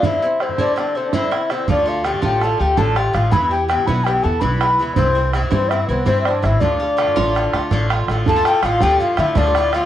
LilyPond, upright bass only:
\new Staff \with { instrumentName = "Upright bass" } { \clef bass \time 9/8 \key d \dorian \tempo 4. = 109 r1 r8 | d,4. a,,4 d,8 a,,4 a,,8 | e,4. b,,4 e,8 b,,4 cis,8 | c,4. g,4 c,8 g,4 a,,8 |
d,4. a,,4 d,8 a,,4 a,,8 | d,8 r8 a,,8 d,8 r8 d8 d,4. | }